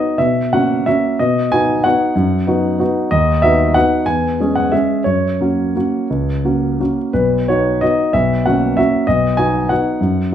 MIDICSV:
0, 0, Header, 1, 2, 480
1, 0, Start_track
1, 0, Key_signature, 5, "major"
1, 0, Tempo, 330396
1, 283, Time_signature, 3, 2, 24, 8
1, 2682, Tempo, 319149
1, 7002, Tempo, 344037
1, 11322, Tempo, 312989
1, 15204, End_track
2, 0, Start_track
2, 0, Title_t, "Grand piano"
2, 0, Program_c, 0, 0
2, 0, Note_on_c, 0, 59, 35
2, 0, Note_on_c, 0, 63, 32
2, 0, Note_on_c, 0, 66, 35
2, 0, Note_on_c, 0, 75, 62
2, 229, Note_off_c, 0, 59, 0
2, 231, Note_off_c, 0, 63, 0
2, 232, Note_off_c, 0, 66, 0
2, 264, Note_on_c, 0, 76, 65
2, 270, Note_off_c, 0, 75, 0
2, 279, Note_on_c, 0, 47, 43
2, 568, Control_c, 0, 64, 127
2, 746, Note_off_c, 0, 47, 0
2, 753, Note_off_c, 0, 76, 0
2, 767, Note_on_c, 0, 78, 70
2, 776, Note_on_c, 0, 58, 35
2, 777, Note_on_c, 0, 61, 35
2, 785, Note_on_c, 0, 66, 37
2, 1208, Note_off_c, 0, 58, 0
2, 1209, Note_off_c, 0, 61, 0
2, 1213, Note_off_c, 0, 66, 0
2, 1252, Note_off_c, 0, 78, 0
2, 1252, Note_on_c, 0, 76, 69
2, 1259, Note_on_c, 0, 58, 37
2, 1268, Control_c, 0, 64, 0
2, 1271, Note_on_c, 0, 61, 36
2, 1277, Note_on_c, 0, 66, 38
2, 1686, Note_off_c, 0, 58, 0
2, 1693, Note_off_c, 0, 61, 0
2, 1696, Note_off_c, 0, 66, 0
2, 1731, Note_off_c, 0, 76, 0
2, 1735, Note_on_c, 0, 75, 67
2, 1744, Note_on_c, 0, 47, 52
2, 1985, Control_c, 0, 64, 127
2, 2200, Note_off_c, 0, 47, 0
2, 2204, Note_on_c, 0, 80, 83
2, 2209, Note_off_c, 0, 75, 0
2, 2214, Note_on_c, 0, 59, 40
2, 2228, Note_on_c, 0, 63, 40
2, 2230, Note_on_c, 0, 66, 44
2, 2638, Note_off_c, 0, 59, 0
2, 2646, Note_off_c, 0, 63, 0
2, 2647, Note_off_c, 0, 66, 0
2, 2669, Note_on_c, 0, 78, 69
2, 2680, Note_off_c, 0, 80, 0
2, 2683, Note_on_c, 0, 59, 38
2, 2687, Note_on_c, 0, 63, 40
2, 2695, Note_on_c, 0, 66, 43
2, 2704, Control_c, 0, 64, 0
2, 3111, Note_off_c, 0, 59, 0
2, 3114, Note_off_c, 0, 63, 0
2, 3118, Note_off_c, 0, 66, 0
2, 3147, Note_on_c, 0, 42, 54
2, 3469, Control_c, 0, 64, 127
2, 3611, Note_off_c, 0, 42, 0
2, 3620, Note_on_c, 0, 59, 44
2, 3626, Note_on_c, 0, 63, 41
2, 3638, Note_on_c, 0, 66, 45
2, 4072, Note_off_c, 0, 59, 0
2, 4075, Note_off_c, 0, 63, 0
2, 4082, Note_off_c, 0, 66, 0
2, 4107, Note_on_c, 0, 63, 42
2, 4111, Note_on_c, 0, 59, 41
2, 4114, Note_on_c, 0, 66, 46
2, 4141, Control_c, 0, 64, 0
2, 4542, Note_off_c, 0, 63, 0
2, 4544, Note_off_c, 0, 59, 0
2, 4545, Note_off_c, 0, 66, 0
2, 4581, Note_on_c, 0, 75, 76
2, 4590, Note_on_c, 0, 39, 52
2, 4594, Note_off_c, 0, 78, 0
2, 4861, Control_c, 0, 64, 127
2, 5044, Note_off_c, 0, 39, 0
2, 5051, Note_on_c, 0, 76, 76
2, 5054, Note_off_c, 0, 75, 0
2, 5072, Note_on_c, 0, 59, 41
2, 5077, Note_on_c, 0, 63, 40
2, 5081, Note_on_c, 0, 66, 45
2, 5503, Note_off_c, 0, 59, 0
2, 5505, Note_off_c, 0, 63, 0
2, 5508, Note_off_c, 0, 66, 0
2, 5536, Note_on_c, 0, 78, 76
2, 5540, Note_off_c, 0, 76, 0
2, 5550, Note_on_c, 0, 63, 39
2, 5552, Note_on_c, 0, 59, 40
2, 5561, Note_on_c, 0, 66, 41
2, 5569, Control_c, 0, 64, 0
2, 5985, Note_off_c, 0, 63, 0
2, 5986, Note_off_c, 0, 59, 0
2, 5991, Note_off_c, 0, 66, 0
2, 6010, Note_on_c, 0, 80, 74
2, 6016, Note_on_c, 0, 40, 51
2, 6026, Note_off_c, 0, 78, 0
2, 6304, Control_c, 0, 64, 127
2, 6488, Note_off_c, 0, 40, 0
2, 6528, Note_on_c, 0, 56, 35
2, 6534, Note_on_c, 0, 61, 35
2, 6544, Note_on_c, 0, 68, 37
2, 6744, Note_off_c, 0, 80, 0
2, 6756, Note_on_c, 0, 78, 63
2, 6964, Note_off_c, 0, 56, 0
2, 6967, Note_off_c, 0, 61, 0
2, 6973, Note_off_c, 0, 68, 0
2, 7000, Note_on_c, 0, 76, 60
2, 7004, Note_off_c, 0, 78, 0
2, 7007, Note_on_c, 0, 61, 31
2, 7011, Note_on_c, 0, 56, 34
2, 7016, Note_on_c, 0, 68, 35
2, 7020, Control_c, 0, 64, 0
2, 7424, Note_off_c, 0, 61, 0
2, 7426, Note_off_c, 0, 56, 0
2, 7429, Note_off_c, 0, 68, 0
2, 7454, Note_on_c, 0, 73, 53
2, 7467, Note_off_c, 0, 76, 0
2, 7476, Note_on_c, 0, 42, 38
2, 7753, Control_c, 0, 64, 127
2, 7939, Note_off_c, 0, 42, 0
2, 7959, Note_on_c, 0, 58, 31
2, 7963, Note_on_c, 0, 61, 31
2, 7975, Note_on_c, 0, 66, 33
2, 8398, Note_off_c, 0, 58, 0
2, 8400, Note_off_c, 0, 61, 0
2, 8406, Note_off_c, 0, 66, 0
2, 8450, Note_on_c, 0, 58, 31
2, 8458, Note_on_c, 0, 61, 29
2, 8461, Control_c, 0, 64, 0
2, 8465, Note_on_c, 0, 66, 33
2, 8881, Note_off_c, 0, 58, 0
2, 8885, Note_off_c, 0, 61, 0
2, 8889, Note_off_c, 0, 66, 0
2, 8934, Note_on_c, 0, 37, 38
2, 9174, Control_c, 0, 64, 127
2, 9394, Note_off_c, 0, 37, 0
2, 9413, Note_on_c, 0, 58, 29
2, 9415, Note_on_c, 0, 61, 30
2, 9421, Note_on_c, 0, 66, 33
2, 9857, Note_off_c, 0, 58, 0
2, 9858, Note_off_c, 0, 61, 0
2, 9861, Note_off_c, 0, 66, 0
2, 9896, Note_on_c, 0, 58, 29
2, 9905, Note_on_c, 0, 61, 30
2, 9917, Note_on_c, 0, 66, 32
2, 9924, Control_c, 0, 64, 0
2, 10143, Note_off_c, 0, 73, 0
2, 10338, Note_off_c, 0, 58, 0
2, 10344, Note_off_c, 0, 61, 0
2, 10350, Note_off_c, 0, 66, 0
2, 10371, Note_on_c, 0, 71, 59
2, 10379, Note_on_c, 0, 35, 43
2, 10687, Control_c, 0, 64, 127
2, 10835, Note_off_c, 0, 35, 0
2, 10846, Note_off_c, 0, 71, 0
2, 10860, Note_on_c, 0, 73, 62
2, 10872, Note_on_c, 0, 59, 35
2, 10877, Note_on_c, 0, 66, 37
2, 10880, Note_on_c, 0, 63, 34
2, 11285, Note_off_c, 0, 59, 0
2, 11287, Note_off_c, 0, 66, 0
2, 11289, Note_off_c, 0, 63, 0
2, 11318, Note_on_c, 0, 75, 63
2, 11325, Note_off_c, 0, 73, 0
2, 11332, Note_on_c, 0, 59, 33
2, 11335, Note_on_c, 0, 63, 36
2, 11344, Control_c, 0, 64, 0
2, 11344, Note_on_c, 0, 66, 37
2, 11772, Note_off_c, 0, 59, 0
2, 11774, Note_off_c, 0, 63, 0
2, 11779, Note_off_c, 0, 66, 0
2, 11809, Note_on_c, 0, 76, 67
2, 11814, Note_off_c, 0, 75, 0
2, 11820, Note_on_c, 0, 35, 46
2, 12083, Control_c, 0, 64, 127
2, 12290, Note_off_c, 0, 35, 0
2, 12299, Note_off_c, 0, 76, 0
2, 12305, Note_on_c, 0, 78, 65
2, 12312, Note_on_c, 0, 58, 35
2, 12321, Note_on_c, 0, 61, 35
2, 12322, Note_on_c, 0, 66, 37
2, 12755, Note_off_c, 0, 58, 0
2, 12760, Note_off_c, 0, 61, 0
2, 12761, Note_off_c, 0, 66, 0
2, 12783, Note_on_c, 0, 76, 65
2, 12793, Note_on_c, 0, 58, 36
2, 12801, Note_off_c, 0, 78, 0
2, 12808, Note_on_c, 0, 61, 33
2, 12809, Note_on_c, 0, 66, 38
2, 12818, Control_c, 0, 64, 0
2, 13220, Note_off_c, 0, 58, 0
2, 13228, Note_off_c, 0, 61, 0
2, 13229, Note_off_c, 0, 66, 0
2, 13247, Note_on_c, 0, 75, 67
2, 13262, Note_off_c, 0, 76, 0
2, 13266, Note_on_c, 0, 35, 44
2, 13517, Control_c, 0, 64, 127
2, 13709, Note_on_c, 0, 80, 76
2, 13719, Note_off_c, 0, 35, 0
2, 13724, Note_off_c, 0, 75, 0
2, 13724, Note_on_c, 0, 63, 37
2, 13726, Note_on_c, 0, 59, 36
2, 13736, Note_on_c, 0, 66, 40
2, 14170, Note_off_c, 0, 63, 0
2, 14171, Note_off_c, 0, 59, 0
2, 14176, Note_off_c, 0, 66, 0
2, 14202, Note_on_c, 0, 78, 63
2, 14211, Note_on_c, 0, 59, 36
2, 14212, Note_off_c, 0, 80, 0
2, 14220, Note_on_c, 0, 63, 34
2, 14235, Note_on_c, 0, 66, 38
2, 14243, Control_c, 0, 64, 0
2, 14645, Note_off_c, 0, 59, 0
2, 14650, Note_off_c, 0, 63, 0
2, 14659, Note_off_c, 0, 66, 0
2, 14683, Note_on_c, 0, 42, 49
2, 14974, Control_c, 0, 64, 127
2, 15141, Note_off_c, 0, 42, 0
2, 15204, Note_off_c, 0, 78, 0
2, 15204, End_track
0, 0, End_of_file